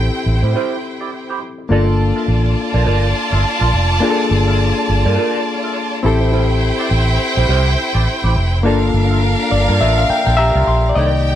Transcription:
Already playing: reed electric piano C4 E4 G4 A4, violin section E4 C5 G5
0.14 muted clean electric guitar stroke
0.26 fingered electric bass A1
0.42 fingered electric bass A2, clean electric guitar E4 G4 C5
0.55 clean electric guitar E4 G4 C5
0.84 muted clean electric guitar stroke
1.00 clean electric guitar E4 G4 D5
1.13 muted clean electric guitar stroke
1.29 clean electric guitar E4 G4 C5
1.42 muted clean electric guitar stroke
1.58 muted clean electric guitar stroke
1.69 fingered electric bass G1, reed electric piano A#3 D4 F4 A4, clean electric guitar F4 A#4 D5, violin section F4 D5 A5
1.87 muted clean electric guitar stroke
1.99 muted clean electric guitar stroke
2.16 clean electric guitar F4 A#4 E5
2.28 fingered electric bass A1, muted clean electric guitar stroke
2.45 muted clean electric guitar stroke
2.74 fingered electric bass A#1, clean electric guitar F4 A#4 D5
2.86 fingered electric bass G1, clean electric guitar F4 A#4 D5
3.15 muted clean electric guitar stroke
3.32 fingered electric bass G1, clean electric guitar F4 A#4 E5
3.44 muted clean electric guitar stroke
3.60 fingered electric bass A#1, clean electric guitar F4 A#4 D5
3.73 fingered electric bass F1, muted clean electric guitar stroke
3.90 muted clean electric guitar stroke
4.00 reed electric piano A#3 D4 F4 G#4, clean electric guitar F4 A#4 D5
4.10 reed electric piano A4
4.19 muted clean electric guitar stroke
4.31 fingered electric bass G1, muted clean electric guitar stroke
4.47 clean electric guitar F4 A#4 E5
4.59 muted clean electric guitar stroke
4.76 muted clean electric guitar stroke
4.89 fingered electric bass G1
5.05 fingered electric bass G2, clean electric guitar F4 A#4 D5
5.17 clean electric guitar F4 A#4 D5
5.46 muted clean electric guitar stroke
5.63 clean electric guitar F4 A#4 E5
5.75 muted clean electric guitar stroke
5.92 muted clean electric guitar stroke
6.03 fingered electric bass A1, reed electric piano C4 E4 G4 A4, clean electric guitar E4 G4 C5, violin section E4 C5 G5
6.20 clean electric guitar E4 G4 C5
6.32 clean electric guitar E4 G4 C5
6.50 muted clean electric guitar stroke
6.62 muted clean electric guitar stroke
6.79 clean electric guitar E4 G4 D5
6.91 fingered electric bass A1
7.07 muted clean electric guitar stroke
7.37 fingered electric bass A#1, clean electric guitar E4 G4 C5
7.49 fingered electric bass C2, clean electric guitar E4 G4 C5
7.79 muted clean electric guitar stroke
7.94 fingered electric bass A1, clean electric guitar E4 G4 D5
8.06 muted clean electric guitar stroke
8.23 fingered electric bass A1, clean electric guitar E4 G4 C5
8.36 fingered electric bass F1, muted clean electric guitar stroke
8.52 muted clean electric guitar stroke
8.63 fingered electric bass G1, reed electric piano A#3 D4 F4 A4, violin section D4 A#4 F5, clean electric guitar F4 A#4 D5
8.81 muted clean electric guitar stroke
8.93 fingered electric bass G1, muted clean electric guitar stroke
9.10 clean electric guitar F4 A#4 E5
9.23 muted clean electric guitar stroke
9.40 muted clean electric guitar stroke
9.51 fingered electric bass G1, reed electric piano D5
9.68 fingered electric bass G2, clean electric guitar F4 A#4 D5
9.81 fingered electric bass A1, clean electric guitar F4 A#4 D5, reed electric piano E5
9.98 reed electric piano F5
10.10 reed electric piano G5, muted fingered electric bass stroke, muted clean electric guitar stroke
10.27 fingered electric bass A#1, clean electric guitar F4 A#4 E5, reed electric piano G5
10.37 reed electric piano G4 E5 A#5
10.55 fingered electric bass C2, clean electric guitar F4 A#4 D5
10.67 fingered electric bass A#1, reed electric piano C6, muted clean electric guitar stroke
10.85 muted clean electric guitar stroke
10.89 reed electric piano D5
10.95 fingered electric bass C2, reed electric piano D#3 A#3 D#4 D5 D#5, clean electric guitar D#4 A#4 D5, violin section G4 G5
11.14 muted clean electric guitar stroke
11.26 muted clean electric guitar stroke

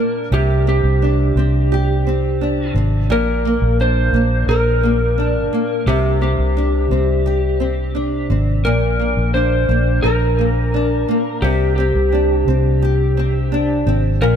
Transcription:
Already playing: nylon-string guitar A#2 A#3 D4 A#4, electric slide guitar A#4
0.32 fingered electric bass C2, nylon-string guitar C3, electric slide guitar G4
0.67 nylon-string guitar C4, electric slide guitar G4
0.84 fingered electric bass C2
1.02 nylon-string guitar D4
1.36 fingered electric bass C2, nylon-string guitar C4
1.72 nylon-string guitar G4
2.07 nylon-string guitar C4
2.41 nylon-string guitar D4
2.74 fingered electric bass G#1, nylon-string guitar C4
3.09 fingered electric bass A#1, nylon-string guitar A#2, electric slide guitar A#4
3.45 nylon-string guitar A#3
3.62 fingered electric bass A#1
3.80 nylon-string guitar D4, electric slide guitar C5
4.13 fingered electric bass A#1, nylon-string guitar A#3
4.47 fingered electric bass A#1, nylon-string guitar A#4, electric slide guitar A#4
4.83 nylon-string guitar A#3
5.18 nylon-string guitar D4
5.53 nylon-string guitar A#3
5.87 fingered electric bass C2, nylon-string guitar C3, electric slide guitar G4
6.21 nylon-string guitar C4, electric slide guitar G4
6.39 fingered electric bass C2
6.57 nylon-string guitar D4
6.91 fingered electric bass C2, nylon-string guitar C4
7.26 nylon-string guitar G4
7.60 nylon-string guitar C4
7.95 nylon-string guitar D4
8.30 fingered electric bass G#1, nylon-string guitar C4
8.65 fingered electric bass A#1, nylon-string guitar A#2, electric slide guitar A#4
8.99 nylon-string guitar A#3
9.17 fingered electric bass A#1
9.34 nylon-string guitar D4, electric slide guitar C5
9.69 fingered electric bass A#1, nylon-string guitar A#3
10.02 fingered electric bass A#1, electric slide guitar A#4, nylon-string guitar A#4
10.39 nylon-string guitar A#3
10.74 nylon-string guitar D4
11.08 nylon-string guitar A#3
11.42 fingered electric bass C2, nylon-string guitar C3, electric slide guitar G4
11.76 nylon-string guitar C4, electric slide guitar G4
11.95 fingered electric bass C2
12.12 nylon-string guitar D4
12.47 fingered electric bass C2, nylon-string guitar C4
12.82 nylon-string guitar G4
13.17 nylon-string guitar C4
13.52 nylon-string guitar D4
13.86 fingered electric bass G#1, nylon-string guitar C4
14.21 fingered electric bass A#1, nylon-string guitar A#2, electric slide guitar A#4

